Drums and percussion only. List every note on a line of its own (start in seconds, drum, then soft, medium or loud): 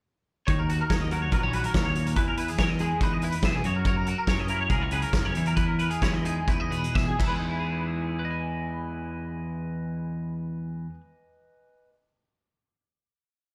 0.48 kick loud
0.48 closed hi-hat medium
0.69 closed hi-hat medium
0.90 kick loud
0.90 snare loud
0.90 closed hi-hat medium
1.11 closed hi-hat medium
1.32 kick medium
1.32 closed hi-hat medium
1.53 closed hi-hat medium
1.64 closed hi-hat medium
1.74 kick loud
1.74 snare loud
1.74 closed hi-hat medium
1.95 closed hi-hat medium
2.06 closed hi-hat medium
2.16 kick loud
2.16 closed hi-hat medium
2.37 closed hi-hat medium
2.48 closed hi-hat medium
2.58 kick loud
2.58 snare loud
2.58 closed hi-hat medium
2.79 closed hi-hat medium
3.01 kick loud
3.01 closed hi-hat medium
3.22 closed hi-hat medium
3.32 closed hi-hat medium
3.42 kick loud
3.42 snare loud
3.42 closed hi-hat medium
3.64 closed hi-hat medium
3.85 kick loud
3.85 closed hi-hat medium
4.06 closed hi-hat medium
4.27 kick loud
4.27 snare medium
4.27 closed hi-hat medium
4.48 closed hi-hat medium
4.70 kick loud
4.70 closed hi-hat medium
4.91 closed hi-hat medium
5.02 closed hi-hat medium
5.13 kick loud
5.13 snare loud
5.13 closed hi-hat medium
5.35 closed hi-hat medium
5.46 closed hi-hat medium
5.57 kick loud
5.57 closed hi-hat medium
5.79 closed hi-hat medium
5.91 closed hi-hat medium
6.02 kick loud
6.02 snare loud
6.02 closed hi-hat medium
6.25 closed hi-hat medium
6.48 kick medium
6.48 closed hi-hat medium
6.72 closed hi-hat medium
6.84 closed hi-hat medium
6.95 kick loud
6.95 snare medium
7.20 kick medium
7.20 crash medium